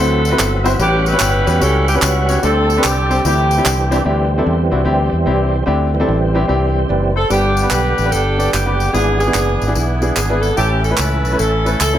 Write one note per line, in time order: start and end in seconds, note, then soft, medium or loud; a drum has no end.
0.00 0.33 D2 medium
0.00 0.77 F#3 medium
0.00 0.22 A3 medium
0.00 0.19 C4 medium
0.00 0.77 C4 medium
0.00 0.19 E4 medium
0.00 0.77 E4 medium
0.00 0.19 F#4 medium
0.00 0.77 F#4 medium
0.00 0.62 A4 loud
0.00 0.80 B4 medium
0.00 0.19 C5 medium
0.25 tambourine medium
0.30 0.46 C4 medium
0.30 0.46 E4 medium
0.30 0.47 F#4 medium
0.30 0.47 B4 medium
0.39 0.74 G1 loud
0.39 clap loud
0.39 tambourine loud
0.64 0.72 C4 loud
0.64 0.73 E4 medium
0.64 0.73 F#4 medium
0.64 0.73 C5 loud
0.64 tambourine medium
0.79 1.14 A1 loud
0.79 1.43 A2 medium
0.79 2.40 G3 medium
0.79 1.58 B3 medium
0.79 1.01 C#4 medium
0.79 2.40 C#4 medium
0.79 1.58 C#4 medium
0.79 1.01 F#4 medium
0.79 1.01 G4 medium
0.79 1.05 G4 loud
0.79 1.01 B4 medium
0.79 2.40 B4 medium
0.79 2.40 F#5 medium
0.79 tambourine medium
1.06 1.61 E4 medium
1.06 1.85 G4 medium
1.06 1.62 B4 loud
1.06 tambourine medium
1.13 1.28 C#4 medium
1.13 1.28 F#4 medium
1.13 1.28 G4 medium
1.13 1.28 B4 medium
1.19 1.43 G1 medium
1.19 clap medium
1.19 tambourine medium
1.46 1.59 E2 loud
1.46 1.54 C#4 medium
1.46 1.54 F#4 medium
1.46 1.55 G4 medium
1.46 1.55 B4 medium
1.46 tambourine medium
1.60 1.96 C#2 loud
1.60 1.82 C#4 medium
1.60 2.02 C#4 medium
1.60 2.39 E4 medium
1.60 1.82 F#4 medium
1.60 1.82 G4 medium
1.60 1.89 A4 medium
1.60 1.82 C#5 medium
1.60 tambourine medium
1.88 1.95 G4 medium
1.88 tambourine medium
1.94 2.09 C#4 medium
1.94 2.10 F#4 medium
1.94 2.10 G4 medium
1.94 2.10 B4 medium
2.02 2.37 C#2 loud
2.02 2.41 B3 medium
2.02 2.40 C#4 medium
2.02 2.41 F#4 medium
2.02 clap loud
2.02 tambourine loud
2.28 2.36 C#4 medium
2.28 2.36 F#4 medium
2.28 2.36 G4 medium
2.28 2.36 C#5 medium
2.28 tambourine medium
2.43 2.78 D2 loud
2.43 3.06 D3 medium
2.43 3.23 G3 medium
2.43 2.64 C4 medium
2.43 3.22 C4 medium
2.43 2.85 C4 medium
2.43 2.64 D4 medium
2.43 3.23 D4 medium
2.43 2.64 G4 medium
2.43 3.23 A4 medium
2.43 2.64 A4 medium
2.43 2.84 A4 loud
2.43 tambourine medium
2.70 tambourine medium
2.77 2.91 C4 medium
2.77 2.92 D4 medium
2.77 2.92 G4 medium
2.77 2.92 B4 medium
2.84 3.19 C2 medium
2.84 3.22 C4 medium
2.84 3.25 G4 medium
2.84 clap medium
2.84 tambourine medium
3.09 3.17 C4 medium
3.09 3.17 D4 medium
3.09 3.18 G4 medium
3.09 3.18 C5 medium
3.09 tambourine soft
3.24 3.59 D2 medium
3.24 3.88 D3 medium
3.24 4.04 E3 medium
3.24 3.45 C4 medium
3.24 4.04 C4 medium
3.24 4.02 C4 medium
3.24 4.04 D4 medium
3.24 3.45 D4 medium
3.24 3.46 E4 medium
3.24 4.02 E4 medium
3.24 4.04 G4 medium
3.24 3.46 G4 medium
3.24 3.88 G4 medium
3.24 tambourine medium
3.51 tambourine medium
3.58 3.72 C4 medium
3.58 3.72 D4 medium
3.58 3.73 E4 medium
3.58 3.73 G4 medium
3.65 4.00 C2 loud
3.65 clap loud
3.65 tambourine loud
3.91 3.99 C4 medium
3.91 3.99 D4 medium
3.91 3.99 E4 medium
3.91 3.99 G4 medium
3.91 tambourine medium
4.05 4.40 D2 medium
4.05 4.68 D3 medium
4.05 5.64 E3 medium
4.05 5.64 G3 soft
4.05 4.26 C4 medium
4.05 5.64 C4 medium
4.05 4.26 D4 medium
4.05 4.26 E4 medium
4.05 4.26 G4 medium
4.38 4.53 C4 medium
4.38 4.53 D4 medium
4.38 4.53 E4 medium
4.38 4.53 A4 medium
4.46 4.69 E2 loud
4.71 4.84 C2 medium
4.71 4.79 C4 medium
4.71 4.79 D4 medium
4.71 4.80 E4 medium
4.71 4.80 F#4 medium
4.84 5.09 D2 medium
4.84 5.13 C4 medium
4.84 5.13 D4 medium
4.84 5.13 E4 medium
4.84 5.13 G4 medium
5.13 5.25 E2 medium
5.26 5.62 C2 medium
5.26 5.54 C4 medium
5.26 5.54 D4 medium
5.26 5.54 E4 medium
5.26 5.54 G4 medium
5.66 6.02 D2 loud
5.66 6.30 D3 medium
5.66 5.88 C4 medium
5.66 5.88 D4 medium
5.66 5.88 E4 medium
5.66 5.88 G4 medium
5.94 6.88 E3 medium
5.94 6.89 G3 medium
5.94 6.89 C4 medium
6.00 6.15 C4 medium
6.00 6.15 D4 medium
6.00 6.16 E4 medium
6.00 6.16 A4 medium
6.08 6.43 A1 medium
6.34 6.42 C4 medium
6.34 6.42 D4 medium
6.34 6.42 E4 medium
6.34 6.43 G4 medium
6.48 6.84 C2 medium
6.48 6.76 C4 medium
6.48 6.76 D4 medium
6.48 6.76 E4 medium
6.48 6.76 G4 medium
6.89 7.25 F#1 medium
6.89 7.14 E3 soft
6.89 7.14 G3 soft
6.89 7.14 C4 medium
6.89 7.15 B4 soft
6.89 7.15 D5 medium
7.16 7.55 A4 medium
7.16 7.30 A4 medium
7.16 7.55 C5 medium
7.30 7.65 G1 medium
7.30 7.94 G2 medium
7.30 8.90 D3 medium
7.30 8.91 G3 medium
7.30 7.51 B3 medium
7.30 8.90 B3 medium
7.30 8.08 B3 medium
7.30 7.51 D4 medium
7.30 7.70 D4 medium
7.30 7.68 G4 medium
7.30 7.51 G4 medium
7.30 8.91 G4 medium
7.30 7.52 B4 medium
7.30 tambourine medium
7.57 tambourine medium
7.62 7.85 B3 medium
7.62 7.85 D4 medium
7.62 7.86 G4 medium
7.62 7.86 B4 medium
7.70 7.94 B1 medium
7.70 8.12 D4 medium
7.70 8.49 G4 medium
7.70 8.12 B4 loud
7.70 clap medium
7.70 tambourine medium
7.98 8.11 A1 medium
7.98 tambourine soft
8.05 8.20 B3 medium
8.05 8.20 D4 medium
8.05 8.20 G4 medium
8.05 8.20 B4 medium
8.12 8.47 G1 medium
8.12 8.52 D4 medium
8.12 8.53 A4 medium
8.12 tambourine medium
8.38 8.49 B3 medium
8.38 8.50 D4 medium
8.38 8.50 G4 medium
8.38 8.50 D5 medium
8.38 tambourine medium
8.52 8.88 F#1 medium
8.52 8.91 B3 medium
8.52 8.91 D4 medium
8.52 8.93 G4 medium
8.52 clap medium
8.52 tambourine loud
8.66 8.83 B3 medium
8.66 8.84 D4 medium
8.66 8.84 G4 medium
8.66 8.84 B4 medium
8.80 tambourine medium
8.92 9.29 G#1 loud
8.92 9.57 G#2 medium
8.92 10.54 E3 medium
8.92 9.14 B3 medium
8.92 9.19 B3 medium
8.92 10.54 B3 medium
8.92 9.14 D4 medium
8.92 9.19 D4 medium
8.92 10.54 D4 medium
8.92 9.15 E4 medium
8.92 9.00 F#4 soft
8.92 9.18 G#4 loud
8.92 9.15 G#4 medium
8.92 tambourine medium
8.99 10.56 G#4 medium
9.19 9.75 B3 medium
9.19 9.98 D4 medium
9.19 9.71 G#4 loud
9.19 tambourine medium
9.26 9.49 B3 medium
9.26 9.49 D4 medium
9.26 9.49 E4 medium
9.26 9.49 G#4 medium
9.34 9.57 F#1 medium
9.34 clap medium
9.34 tambourine medium
9.62 9.74 G#1 medium
9.62 tambourine soft
9.67 9.82 B3 medium
9.67 9.83 D4 medium
9.67 9.83 E4 medium
9.67 9.83 G#4 medium
9.75 10.10 B1 medium
9.75 10.54 B3 medium
9.75 10.13 E4 medium
9.75 tambourine medium
10.01 10.13 B3 medium
10.01 10.13 D4 medium
10.01 10.13 E4 medium
10.01 10.13 G#4 medium
10.01 tambourine medium
10.16 10.51 G#1 medium
10.16 10.43 G#4 medium
10.16 clap medium
10.16 tambourine loud
10.29 10.47 B3 medium
10.29 10.47 D4 medium
10.29 10.47 E4 medium
10.29 10.47 B4 medium
10.42 10.56 A4 medium
10.42 tambourine soft
10.56 10.92 A1 loud
10.56 11.21 A2 medium
10.56 11.98 E3 medium
10.56 11.98 A3 medium
10.56 10.78 A3 medium
10.56 11.98 C#4 medium
10.56 11.35 C#4 medium
10.56 10.78 C#4 medium
10.56 10.97 E4 medium
10.56 10.78 E4 medium
10.56 10.82 G4 loud
10.56 11.98 A4 medium
10.56 10.79 A4 medium
10.56 tambourine medium
10.84 10.97 A4 medium
10.84 tambourine medium
10.90 11.12 A3 medium
10.90 11.13 C#4 medium
10.90 11.13 E4 medium
10.90 11.13 B4 medium
10.97 11.25 C#2 medium
10.97 11.38 E4 medium
10.97 11.39 B4 medium
10.97 clap medium
10.97 tambourine medium
11.25 11.37 B1 loud
11.25 tambourine soft
11.32 11.46 A3 medium
11.32 11.47 C#4 medium
11.32 11.47 E4 medium
11.32 11.47 B4 medium
11.39 11.74 A1 medium
11.39 11.79 C#4 medium
11.39 11.79 E4 medium
11.39 11.79 A4 medium
11.39 tambourine medium
11.65 11.76 A3 medium
11.65 11.77 C#4 medium
11.65 11.77 E4 medium
11.65 11.77 B4 medium
11.65 tambourine medium
11.80 11.98 C#2 medium
11.80 11.98 C#4 medium
11.80 11.98 E4 medium
11.80 11.98 A4 medium
11.80 clap medium
11.80 tambourine loud
11.93 11.98 A3 medium
11.93 11.98 C#4 medium
11.93 11.98 E4 medium
11.93 11.98 A4 medium